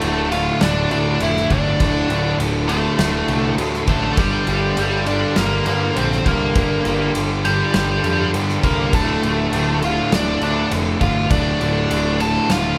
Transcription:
Already playing: A3 A4
0.01 D1 D2 A2 D3, crash
0.31 D2 A2 D3 F4 F5, crash
0.61 D1 D2 A2 D3 D4 D5, snare, crash
0.91 D2 A2 D3 D4 D5, crash
1.20 F1 D2 A2 D3 E4 E5, crash
1.36 snare
1.50 G1 D2 A2 D3 D4 D5, kick, crash
1.79 D1 D2 A2 D3, kick, crash
2.09 D1 D2 A2 D3, crash
2.39 D1 D2 A2 D3, crash
2.68 D2 A2 D3 A3 A4, crash
2.97 D1 D2 A2 D3, snare, crash
3.28 C2 D2 A2 D3, crash
3.58 D2 A2 D3, crash
3.74 snare
3.87 A1 D2 A2 D3 A3 A4, kick, crash
4.17 G1 G2 D3 G3 G4, kick, crash
4.47 G1 G2 D3 G3, crash
4.77 G1 G2 D3 G3, crash
5.06 G2 D3 G3 D4 D5, crash
5.36 G1 G2 D3 G3 A#3 A#4, snare, crash
5.66 G2 D3 G3 A#3 A#4, crash
5.95 A#1 G2 D3 G3 C4 C5, crash
6.12 snare
6.26 C2 G2 D3 G3 A#3 A#4, kick, crash
6.55 G1 G2 D3 G3, kick, crash
6.85 G1 G2 D3 G3, crash
7.14 G1 G2 D3 G3, crash
7.45 G2 D3 G3 G4, crash
7.74 G1 G2 D3 G3, snare, crash
8.04 F2 G2 D3 G3, crash
8.34 G2 D3 G3, crash
8.49 snare
8.63 C2 G2 D3 G3 A#3 A#4, kick, crash
8.93 D1 D2 A2 D3 A3 A4, kick, crash
9.23 D1 D2 A2 D3, crash
9.52 D1 D2 A2 D3, crash
9.82 D2 A2 D3 F4 F5, crash
10.12 D1 D2 A2 D3 D4 D5, snare, crash
10.41 D2 A2 D3 D4 D5, crash
10.71 F1 D2 A2 D3, crash
11.01 G1 D2 A2 D3 F4 F5, kick, crash
11.30 D1 D2 A2 D3 D4 D5, kick, crash
11.60 D1 D2 A2 D3, crash
11.89 D1 D2 A2 D3, crash
12.20 D2 A2 D3 A4 A5, crash
12.49 D1 D2 A2 D3 F4 F5, snare, crash

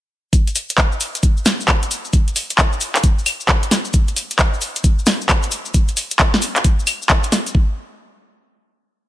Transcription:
0.33 kick, closed hi-hat, cabasa
0.47 closed hi-hat, cabasa
0.55 open hi-hat, cabasa
0.69 closed hi-hat, cabasa
0.78 kick, clap, cabasa
0.92 cabasa
1.01 open hi-hat, cabasa
1.15 closed hi-hat, cabasa
1.23 kick, closed hi-hat, cabasa
1.37 cabasa
1.46 snare, open hi-hat, cabasa
1.61 cabasa
1.68 kick, clap, cabasa, claves
1.83 closed hi-hat, cabasa
1.91 open hi-hat, cabasa
2.05 cabasa
2.13 kick, closed hi-hat, cabasa
2.28 closed hi-hat, cabasa
2.36 open hi-hat, cabasa
2.50 closed hi-hat, cabasa
2.58 kick, clap, cabasa
2.73 cabasa
2.81 open hi-hat, cabasa
2.96 clap, closed hi-hat, cabasa
3.04 kick, closed hi-hat, cabasa
3.19 cabasa
3.26 open hi-hat, cabasa, claves
3.40 cabasa
3.48 kick, clap, cabasa
3.63 closed hi-hat, cabasa
3.71 snare, open hi-hat, cabasa
3.85 cabasa
3.93 kick, closed hi-hat, cabasa
4.08 closed hi-hat, cabasa
4.16 open hi-hat, cabasa
4.31 closed hi-hat, cabasa
4.39 kick, clap, cabasa
4.54 cabasa
4.61 open hi-hat, cabasa
4.76 closed hi-hat, cabasa
4.84 kick, closed hi-hat, cabasa
4.99 cabasa
5.06 snare, open hi-hat, cabasa
5.21 cabasa
5.29 kick, clap, cabasa, claves
5.43 closed hi-hat, cabasa
5.51 open hi-hat, cabasa
5.65 cabasa
5.74 kick, closed hi-hat, cabasa
5.88 closed hi-hat, cabasa
5.97 open hi-hat, cabasa
6.11 closed hi-hat, cabasa
6.19 kick, clap, cabasa
6.34 snare, cabasa
6.42 open hi-hat, cabasa
6.56 clap, closed hi-hat, cabasa
6.64 kick, closed hi-hat, cabasa
6.79 cabasa
6.87 open hi-hat, cabasa, claves
7.02 cabasa
7.09 kick, clap, cabasa
7.23 closed hi-hat, cabasa
7.32 snare, open hi-hat, cabasa
7.46 closed hi-hat, cabasa
7.55 kick

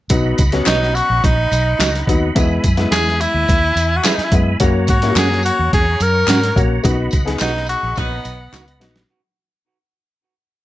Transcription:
0.09 B1 F#3 B3 D#4 D#5 F#5 B5, kick, closed hi-hat, tambourine
0.38 C#2, kick, closed hi-hat, tambourine
0.52 F#3 B3 C#4, snare, closed hi-hat
0.66 B1 D#4 F#4 B4 D#5, snare, clap, closed hi-hat, tambourine
0.83 snare
0.95 F#4, closed hi-hat, tambourine
1.10 A#1
1.24 A#1 D#4, kick, closed hi-hat, tambourine
1.52 B1, closed hi-hat, tambourine
1.79 C#2 D#4 F#4 B4 D#5, snare, clap, closed hi-hat, tambourine
1.95 snare, closed hi-hat
2.07 D#2 F#3 B3 D#4, kick, closed hi-hat, tambourine
2.35 E2 G#3 B3 E4 E5 G#5, kick, closed hi-hat, tambourine
2.64 F#2, kick, closed hi-hat, tambourine
2.77 G#3 B3 E4, snare, closed hi-hat
2.92 E2 E4 G#4 B4 E5, snare, clap, closed hi-hat, tambourine
3.07 snare
3.21 E4, closed hi-hat, tambourine
3.34 D#2
3.48 D#2, kick, closed hi-hat, tambourine
3.76 E2, closed hi-hat, tambourine
3.96 F#4
4.04 E4 G#4 B4 E5, snare, clap, closed hi-hat, tambourine
4.16 D#4, muted fingered electric bass stroke, snare, closed hi-hat
4.25 E4
4.32 F#2 G#3 B3 E4, kick, closed hi-hat, tambourine
4.60 F#2 A#3 C#4 F#4 C#5 F#5 A#5, kick, closed hi-hat, tambourine
4.87 G#2 F#4, kick, closed hi-hat, tambourine
5.02 A#3 C#4 E4, snare, closed hi-hat
5.10 F#4
5.16 F#2 C#4 F#4 G#4 A#4 F#5, snare, clap, closed hi-hat, tambourine
5.32 snare
5.43 F#4, closed hi-hat, tambourine
5.59 E2
5.73 E2 G#4, kick, closed hi-hat
6.00 F#2 A#4, closed hi-hat, tambourine
6.27 G#2 C#4 F#4 A#4 F#5, snare, clap, closed hi-hat, tambourine
6.43 snare, closed hi-hat
6.56 A#1 A#3 C#4 F#4, kick, closed hi-hat, tambourine
6.83 B1 B3 D#4 F#4 D#5 B5, kick, closed hi-hat, tambourine
7.11 C#2, kick, closed hi-hat, tambourine
7.25 B3 D#4 G#4, snare, closed hi-hat
7.39 B1 D#4 F#4 B4 F#5, snare, clap, closed hi-hat, tambourine
7.56 snare
7.66 F#4, closed hi-hat, tambourine
7.83 A#1
7.96 A#1 F#3 B3 D#4 B4, kick, closed hi-hat, tambourine
8.25 B1, closed hi-hat, tambourine
8.53 C#2 D#4 F#4 B4 F#5, snare, clap, closed hi-hat, tambourine
8.68 closed hi-hat
8.80 A#1 B3 D#4 F#4, snare, closed hi-hat, tambourine
8.96 snare

